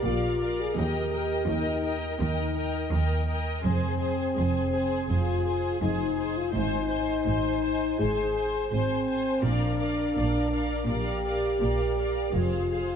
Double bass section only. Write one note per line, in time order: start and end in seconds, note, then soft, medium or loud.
0.05 0.66 A#1 soft
0.77 1.38 D#2 medium
1.49 2.09 D#2 medium
2.21 2.82 D#2 medium
2.94 3.54 D#2 medium
3.65 4.25 F1 medium
4.37 4.99 F1 medium
5.10 5.71 F1 medium
5.83 6.43 F1 medium
6.55 7.15 G#1 medium
7.28 7.89 G#1 medium
8.01 8.61 G#1 medium
8.72 9.32 G#1 soft
9.43 10.04 A#1 medium
10.16 10.78 A#1 medium
10.89 11.50 A#1 soft
11.62 12.23 A#1 soft
12.34 12.96 F1 soft